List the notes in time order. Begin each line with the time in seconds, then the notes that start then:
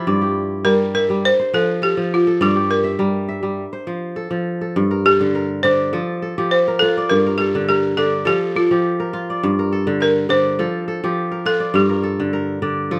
Already playing: F3 E4 F4 G4 A4
0.07 G2 D5
0.21 G4
0.65 G3 A#4
0.94 A#4 E5
1.10 G3
1.25 C5
1.39 C5
1.54 F3 A4
1.82 G4 A4
1.97 F3
2.14 F4
2.27 A4
2.41 G2 G4 D5
2.56 G4
2.71 A#4
2.84 E5
2.99 G3 A#4
3.29 E5
3.43 G3
3.73 C5
3.87 F3
4.16 A4
4.31 F3
4.61 A4
4.76 G2
4.91 A#4
5.05 G4 A4
5.21 D3
5.35 A#4
5.63 D3 C5 D5
5.93 F3 A4
6.22 A4
6.38 F3 G4
6.51 C5
6.68 A#4
6.79 F4 A4
6.97 D5
7.10 G2 A#4
7.26 A#4
7.38 G4 A4
7.55 D3
7.68 G4 A#4
7.97 D3 A4 D5
8.25 F3 G4 A4
8.55 F4 A4
8.71 F3 G4
9.00 A#4
9.13 F4
9.30 D5
9.43 G2
9.59 A#4
9.72 A4
9.87 D3
10.00 A#4
10.29 D3 C5 D5
10.59 F3 A4
10.88 A4
11.04 F3 G4
11.32 A#4
11.46 F4 A4
11.60 D5
11.74 G2 G4
11.90 A#4
12.03 A4
12.20 D3
12.33 A#4
12.62 D3 D5
12.91 F3 A4